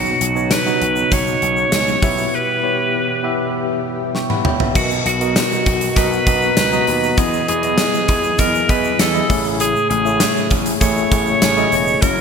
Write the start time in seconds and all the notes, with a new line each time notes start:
Already playing: B1 B2 C#3 F#3 B3 D#4 F#4 C#5
0.06 shaker
0.21 B1, closed hi-hat, shaker
0.35 B3 D#4 F#4 C#5, shaker
0.51 B4, snare, closed hi-hat, shaker
0.66 B3 D#4 F#4 D#5, shaker
0.81 B1, closed hi-hat
0.96 shaker
1.11 B1 C#5, kick, closed hi-hat, shaker
1.27 shaker
1.42 B1, closed hi-hat
1.57 shaker
1.72 C#2, snare, closed hi-hat, shaker
1.87 shaker
2.02 B1 B2 E3 G3 B3 E4 G4 E5, kick, open hi-hat, shaker
2.18 shaker
2.34 B4
2.63 B3 E4 G4 C#5
3.23 B3 E4 G4 E5
4.15 G5 C#6, snare
4.30 F#5 B5, high tom
4.45 C#5 G5, mid tom
4.60 B4 E5, floor tom
4.75 B1 B2 F#3 B3 F#4 A#4 D#5, kick, crash, shaker
4.91 shaker
5.05 B1 F#4, closed hi-hat
5.20 B3 F#4 A#4 D#5, closed hi-hat, shaker
5.36 snare, closed hi-hat, tambourine, shaker
5.52 shaker
5.66 B1, kick, closed hi-hat
5.81 closed hi-hat, shaker
5.96 B1 B3 F#4 A#4 B4 D#5, kick, closed hi-hat, shaker
6.12 shaker
6.26 B1 B3 F#4 D#5 A#5, kick, closed hi-hat, shaker
6.42 shaker
6.57 C#2, snare, closed hi-hat, tambourine, shaker
6.72 B3 F#4 D#5 A#5, shaker
6.87 D#2, open hi-hat, shaker
7.03 shaker
7.17 E2 E3 B3 E4 G#4 D#5, kick, closed hi-hat, shaker
7.33 shaker
7.48 E2 G#4, closed hi-hat
7.63 B3 E4 G#4 D#5, closed hi-hat, shaker
7.78 snare, closed hi-hat, tambourine, shaker
7.94 shaker
8.08 E2, kick, closed hi-hat
8.23 shaker
8.38 E2 B3 E4 G#4 A#4 D#5, kick, closed hi-hat, shaker
8.55 shaker
8.69 E2 B3 E4 G#4 B4 D#5, kick, closed hi-hat, shaker
8.84 shaker
8.99 E2 A4, snare, closed hi-hat, tambourine, shaker
9.14 B3 E4 G#4 D#5, shaker
9.30 A1 A2 C#3 A3 E4 G#4 C#5, kick, open hi-hat, shaker
9.45 shaker
9.60 G#4, closed hi-hat, shaker
9.76 shaker
9.90 A1 G#4, closed hi-hat
10.05 A3 E4 G#4 C#5, shaker
10.20 snare, closed hi-hat, tambourine, shaker
10.36 shaker
10.51 A1, kick, closed hi-hat
10.66 closed hi-hat, shaker
10.81 A1 A3 E4 G#4 C#5 E5, kick, closed hi-hat, shaker
10.97 shaker
11.11 A1 A3 E4 G#4 C#5, kick, closed hi-hat, shaker
11.27 shaker
11.42 A1, snare, closed hi-hat, tambourine, shaker
11.57 A3 E4 G#4 D#5, shaker
11.72 E1, open hi-hat, shaker
11.87 shaker
12.01 F#1 F#3 A#3 C#4 E4 F#4 A#4 C#5, kick, closed hi-hat, shaker
12.18 shaker